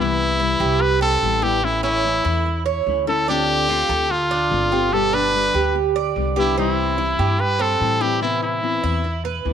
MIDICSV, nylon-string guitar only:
0, 0, Header, 1, 3, 480
1, 0, Start_track
1, 0, Key_signature, 0, "major"
1, 0, Tempo, 411805
1, 1898, Time_signature, 4, 2, 24, 8
1, 11108, End_track
2, 0, Start_track
2, 0, Title_t, "Nylon-string guitar"
2, 0, Program_c, 0, 24
2, 0, Note_on_c, 0, 48, 56
2, 0, Note_on_c, 0, 52, 65
2, 0, Note_on_c, 0, 55, 74
2, 0, Note_on_c, 0, 59, 72
2, 0, Note_on_c, 0, 64, 67
2, 447, Note_off_c, 0, 48, 0
2, 449, Note_off_c, 0, 52, 0
2, 451, Note_off_c, 0, 55, 0
2, 454, Note_off_c, 0, 59, 0
2, 456, Note_off_c, 0, 64, 0
2, 465, Note_on_c, 0, 52, 47
2, 473, Note_on_c, 0, 55, 47
2, 478, Note_on_c, 0, 59, 47
2, 485, Note_on_c, 0, 64, 52
2, 920, Note_off_c, 0, 52, 0
2, 924, Note_off_c, 0, 55, 0
2, 927, Note_off_c, 0, 59, 0
2, 929, Note_off_c, 0, 64, 0
2, 1418, Note_on_c, 0, 52, 47
2, 1427, Note_on_c, 0, 55, 49
2, 1434, Note_on_c, 0, 59, 46
2, 1437, Note_on_c, 0, 64, 52
2, 1638, Note_off_c, 0, 64, 0
2, 1648, Note_off_c, 0, 59, 0
2, 1649, Note_off_c, 0, 52, 0
2, 1652, Note_on_c, 0, 64, 67
2, 1653, Note_off_c, 0, 55, 0
2, 1662, Note_on_c, 0, 59, 66
2, 1666, Note_on_c, 0, 55, 62
2, 1673, Note_on_c, 0, 52, 59
2, 1877, Note_off_c, 0, 52, 0
2, 1885, Note_off_c, 0, 64, 0
2, 1890, Note_off_c, 0, 59, 0
2, 1891, Note_on_c, 0, 52, 64
2, 1892, Note_off_c, 0, 55, 0
2, 1903, Note_on_c, 0, 57, 66
2, 1906, Note_on_c, 0, 61, 79
2, 1914, Note_on_c, 0, 64, 62
2, 2364, Note_off_c, 0, 52, 0
2, 2370, Note_off_c, 0, 57, 0
2, 2372, Note_off_c, 0, 61, 0
2, 2376, Note_off_c, 0, 64, 0
2, 2381, Note_on_c, 0, 52, 47
2, 2392, Note_on_c, 0, 57, 51
2, 2397, Note_on_c, 0, 61, 56
2, 2849, Note_off_c, 0, 52, 0
2, 2853, Note_off_c, 0, 61, 0
2, 2854, Note_off_c, 0, 57, 0
2, 3342, Note_on_c, 0, 52, 48
2, 3350, Note_on_c, 0, 57, 50
2, 3355, Note_on_c, 0, 61, 51
2, 3361, Note_on_c, 0, 64, 54
2, 3568, Note_off_c, 0, 64, 0
2, 3570, Note_off_c, 0, 52, 0
2, 3573, Note_off_c, 0, 57, 0
2, 3576, Note_off_c, 0, 61, 0
2, 3582, Note_on_c, 0, 64, 62
2, 3592, Note_on_c, 0, 61, 66
2, 3597, Note_on_c, 0, 57, 57
2, 3809, Note_off_c, 0, 64, 0
2, 3814, Note_off_c, 0, 61, 0
2, 3817, Note_off_c, 0, 57, 0
2, 3821, Note_on_c, 0, 50, 64
2, 3831, Note_on_c, 0, 57, 64
2, 3836, Note_on_c, 0, 60, 69
2, 3841, Note_on_c, 0, 65, 67
2, 4289, Note_off_c, 0, 50, 0
2, 4291, Note_off_c, 0, 57, 0
2, 4296, Note_off_c, 0, 60, 0
2, 4299, Note_off_c, 0, 65, 0
2, 4301, Note_on_c, 0, 50, 51
2, 4305, Note_on_c, 0, 57, 53
2, 4314, Note_on_c, 0, 60, 50
2, 4321, Note_on_c, 0, 65, 53
2, 4768, Note_off_c, 0, 50, 0
2, 4771, Note_off_c, 0, 57, 0
2, 4772, Note_off_c, 0, 60, 0
2, 4772, Note_off_c, 0, 65, 0
2, 5250, Note_on_c, 0, 50, 51
2, 5261, Note_on_c, 0, 57, 46
2, 5266, Note_on_c, 0, 60, 48
2, 5277, Note_on_c, 0, 65, 49
2, 5483, Note_off_c, 0, 50, 0
2, 5486, Note_off_c, 0, 65, 0
2, 5488, Note_off_c, 0, 57, 0
2, 5491, Note_off_c, 0, 60, 0
2, 5500, Note_on_c, 0, 65, 62
2, 5510, Note_on_c, 0, 60, 69
2, 5519, Note_on_c, 0, 57, 54
2, 5728, Note_off_c, 0, 65, 0
2, 5733, Note_off_c, 0, 60, 0
2, 5734, Note_on_c, 0, 47, 65
2, 5736, Note_on_c, 0, 50, 63
2, 5738, Note_off_c, 0, 57, 0
2, 5745, Note_on_c, 0, 59, 74
2, 5746, Note_on_c, 0, 55, 62
2, 5749, Note_on_c, 0, 67, 71
2, 6203, Note_off_c, 0, 50, 0
2, 6205, Note_off_c, 0, 47, 0
2, 6211, Note_off_c, 0, 55, 0
2, 6211, Note_off_c, 0, 59, 0
2, 6213, Note_off_c, 0, 67, 0
2, 6217, Note_on_c, 0, 50, 49
2, 6224, Note_on_c, 0, 55, 50
2, 6231, Note_on_c, 0, 59, 52
2, 6236, Note_on_c, 0, 67, 52
2, 6687, Note_off_c, 0, 50, 0
2, 6690, Note_off_c, 0, 55, 0
2, 6694, Note_off_c, 0, 59, 0
2, 6696, Note_off_c, 0, 67, 0
2, 7175, Note_on_c, 0, 50, 44
2, 7183, Note_on_c, 0, 55, 48
2, 7192, Note_on_c, 0, 59, 46
2, 7197, Note_on_c, 0, 67, 52
2, 7406, Note_off_c, 0, 50, 0
2, 7406, Note_off_c, 0, 67, 0
2, 7409, Note_off_c, 0, 59, 0
2, 7410, Note_off_c, 0, 55, 0
2, 7420, Note_on_c, 0, 67, 69
2, 7423, Note_on_c, 0, 59, 59
2, 7432, Note_on_c, 0, 55, 60
2, 7437, Note_on_c, 0, 50, 57
2, 7649, Note_off_c, 0, 67, 0
2, 7650, Note_off_c, 0, 59, 0
2, 7654, Note_off_c, 0, 55, 0
2, 7657, Note_off_c, 0, 50, 0
2, 7663, Note_on_c, 0, 48, 61
2, 7668, Note_on_c, 0, 52, 64
2, 7670, Note_on_c, 0, 55, 74
2, 7678, Note_on_c, 0, 60, 65
2, 7686, Note_on_c, 0, 64, 78
2, 8121, Note_off_c, 0, 52, 0
2, 8127, Note_off_c, 0, 55, 0
2, 8130, Note_off_c, 0, 48, 0
2, 8135, Note_off_c, 0, 60, 0
2, 8135, Note_on_c, 0, 52, 43
2, 8141, Note_on_c, 0, 55, 47
2, 8142, Note_off_c, 0, 64, 0
2, 8149, Note_on_c, 0, 60, 53
2, 8155, Note_on_c, 0, 64, 55
2, 8600, Note_off_c, 0, 52, 0
2, 8602, Note_off_c, 0, 55, 0
2, 8602, Note_off_c, 0, 60, 0
2, 8604, Note_off_c, 0, 64, 0
2, 9085, Note_on_c, 0, 52, 54
2, 9094, Note_on_c, 0, 55, 46
2, 9098, Note_on_c, 0, 60, 55
2, 9106, Note_on_c, 0, 64, 58
2, 9317, Note_off_c, 0, 64, 0
2, 9322, Note_off_c, 0, 52, 0
2, 9326, Note_off_c, 0, 55, 0
2, 9328, Note_off_c, 0, 60, 0
2, 9331, Note_on_c, 0, 64, 73
2, 9342, Note_on_c, 0, 60, 65
2, 9347, Note_on_c, 0, 55, 57
2, 9354, Note_on_c, 0, 52, 55
2, 9555, Note_off_c, 0, 52, 0
2, 9558, Note_off_c, 0, 60, 0
2, 9565, Note_off_c, 0, 64, 0
2, 9566, Note_on_c, 0, 48, 64
2, 9567, Note_off_c, 0, 55, 0
2, 9569, Note_on_c, 0, 52, 57
2, 9572, Note_on_c, 0, 60, 68
2, 9582, Note_on_c, 0, 59, 65
2, 9584, Note_on_c, 0, 64, 75
2, 10038, Note_off_c, 0, 52, 0
2, 10042, Note_off_c, 0, 48, 0
2, 10045, Note_off_c, 0, 60, 0
2, 10051, Note_off_c, 0, 59, 0
2, 10052, Note_off_c, 0, 64, 0
2, 10052, Note_on_c, 0, 52, 49
2, 10061, Note_on_c, 0, 60, 53
2, 10069, Note_on_c, 0, 59, 49
2, 10076, Note_on_c, 0, 64, 51
2, 10521, Note_off_c, 0, 52, 0
2, 10526, Note_off_c, 0, 59, 0
2, 10526, Note_off_c, 0, 60, 0
2, 10529, Note_off_c, 0, 64, 0
2, 11014, Note_on_c, 0, 52, 49
2, 11023, Note_on_c, 0, 60, 52
2, 11027, Note_on_c, 0, 59, 47
2, 11035, Note_on_c, 0, 64, 60
2, 11108, Note_off_c, 0, 52, 0
2, 11108, Note_off_c, 0, 59, 0
2, 11108, Note_off_c, 0, 60, 0
2, 11108, Note_off_c, 0, 64, 0
2, 11108, End_track
3, 0, Start_track
3, 0, Title_t, "Muted nylon-string guitar strokes"
3, 932, Note_on_c, 9, 29, 58
3, 1048, Note_off_c, 9, 29, 0
3, 2863, Note_on_c, 9, 29, 61
3, 2979, Note_off_c, 9, 29, 0
3, 4781, Note_on_c, 9, 29, 63
3, 4898, Note_off_c, 9, 29, 0
3, 6699, Note_on_c, 9, 29, 56
3, 6816, Note_off_c, 9, 29, 0
3, 8608, Note_on_c, 9, 29, 56
3, 8724, Note_off_c, 9, 29, 0
3, 10533, Note_on_c, 9, 29, 55
3, 10649, Note_off_c, 9, 29, 0
3, 11108, End_track
0, 0, End_of_file